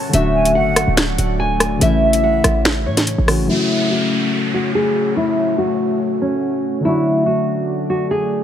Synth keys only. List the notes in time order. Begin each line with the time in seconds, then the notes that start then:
Already playing: C#4 F#4
0.09 D3 F#3
0.13 A3 D4
0.17 F#4
1.77 C#3 E3
1.82 A3 C#4
1.86 E4
3.26 C#3 E3 A3 C#4
3.30 F#4
3.45 C#3 F#3
3.49 A3 C#4
3.53 F#4
6.80 D3 F#3
6.85 A3 D4
6.89 F#4